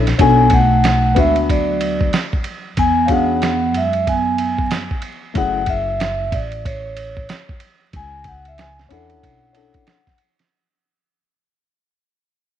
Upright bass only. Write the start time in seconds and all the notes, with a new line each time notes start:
Already playing: A#1
0.19 B1
1.16 D2
2.77 E2
3.74 F#2
5.35 F#1
6.32 A1
7.94 C#2
8.91 E2
9.23 B1